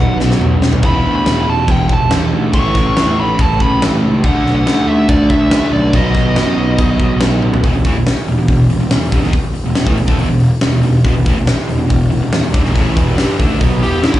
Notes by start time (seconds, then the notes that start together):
Already playing: B2 F#3 B3 F#5
0.00 B1
0.20 B1, snare
0.31 snare
0.41 B1, mid tom
0.62 B1, snare
0.73 floor tom
0.83 E1 E2 B2 E3 B5, kick, crash
1.06 D2
1.16 B5
1.26 E1, snare, crash
1.48 E1 A5
1.68 E1 G5, kick, crash
1.89 E1 A5, kick
2.10 E1, snare, crash
2.32 D2
2.53 A1 A2 E3 A3 C#6, kick, crash
2.75 A1, kick, snare
2.87 C#6
2.96 E2, snare, crash
3.18 A1 B5
3.39 A1 A5, kick, crash
3.60 A1 B5, kick
3.81 A1, snare, crash
4.02 C#2
4.23 D2 D3 A3 D4 F#5, kick, crash
4.45 B1, snare
4.56 F#5
4.66 D2, snare, crash
4.87 D2 E5
5.09 D2 D5, kick, crash
5.30 D2 E5, kick
5.50 D2, snare, crash
5.71 B1 D5
5.93 B1 B2 F#3 B3 D#5, kick, crash
6.15 B1, kick, snare
6.35 F#2, snare, crash
6.56 B1
6.79 B1, kick, crash
7.00 B1, kick
7.20 B1, snare, crash
7.42 B1, high tom
7.54 floor tom
7.64 E1 E2 B2, kick, open hi-hat
7.74 E1 E2 B2
7.85 A1 A2 E3, kick, open hi-hat
7.94 E1 E2 B2
8.05 muted picked electric bass stroke, muted overdriven electric guitar stroke, snare, open hi-hat
8.27 E1 E2 B2, open hi-hat
8.37 E1 E2 B2
8.48 E1 E2 B2, kick, open hi-hat
8.69 E1 E2 B2, open hi-hat
8.79 E1 E2 B2
8.89 E1 E2 B2, snare, open hi-hat
9.00 E1 E2 B2
9.12 G1 G2 D3, kick, open hi-hat
9.22 E1 E2 B2, snare
9.33 muted overdriven electric guitar stroke, muted picked electric bass stroke, kick, open hi-hat
9.43 muted picked electric bass stroke, muted overdriven electric guitar stroke
9.54 muted picked electric bass stroke, muted overdriven electric guitar stroke, open hi-hat
9.64 E1 E2 B2
9.75 E1 E2 B2, snare, open hi-hat
9.86 A1 A2 E3, kick
9.97 E1 E2 B2, open hi-hat
10.07 D2 D3 A3, kick
10.18 E1 E2 B2, open hi-hat
10.29 E1 E2 B2
10.40 open hi-hat
10.61 E1 E2 B2, snare, open hi-hat
10.72 E1 E2 B2
10.83 E1 E2 B2, open hi-hat
11.04 E1 E2 B2, kick, open hi-hat
11.15 E1 E2 B2
11.26 A1 A2 E3, kick, open hi-hat
11.37 E1 E2 B2
11.47 muted overdriven electric guitar stroke, muted picked electric bass stroke, snare, open hi-hat
11.58 snare
11.67 E1 E2 B2, open hi-hat
11.78 E1 E2 B2
11.88 E1 E2 B2, kick, open hi-hat
12.10 E1 E2 B2, open hi-hat
12.22 E1 E2 B2
12.32 E1 E2 B2, snare, open hi-hat
12.43 E1 E2 B2
12.52 G1 G2 D3, kick, open hi-hat
12.63 E1 E2 B2, snare
12.73 A1 A2 E3 A3, kick, open hi-hat
12.95 E1 E2 B2 E3, kick, open hi-hat
13.16 G1 G2 D3 G3, snare, open hi-hat
13.29 snare
13.38 D2 D3 A3 D4, kick, open hi-hat
13.59 B1 B2 F#3 B3, kick, open hi-hat
13.81 E1 E2 B2 E3 G4, open hi-hat
14.02 G1 G2 D3 E4, snare, open hi-hat
14.14 D2 D3 A3, kick